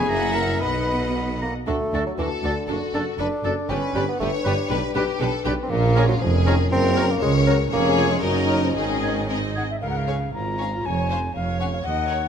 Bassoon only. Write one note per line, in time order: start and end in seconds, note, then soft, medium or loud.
0.10 0.64 E4 medium
0.63 1.15 D#4 medium
1.16 1.28 B3 medium
1.42 1.54 A#3 medium
1.67 2.05 A3 medium
2.06 2.12 F#3 medium
2.19 2.30 E3 medium
2.44 2.93 D3 medium
3.20 3.71 D4 medium
3.69 4.08 C#4 loud
4.08 4.19 B3 medium
4.20 4.31 A3 medium
4.45 4.94 G3 medium
5.63 5.72 C4 medium
5.70 6.08 A#3 loud
6.09 6.14 F#3 medium
6.21 6.33 F3 medium
6.47 6.58 D#3 medium
6.72 7.13 C4 loud
7.11 7.21 A#3 medium
7.22 7.33 G#3 medium
7.47 7.58 F#3 medium
7.73 8.13 A#3 loud
8.11 8.23 G#3 medium
8.24 8.63 F#3 medium
8.64 8.79 F3 medium
8.78 9.31 D#3 medium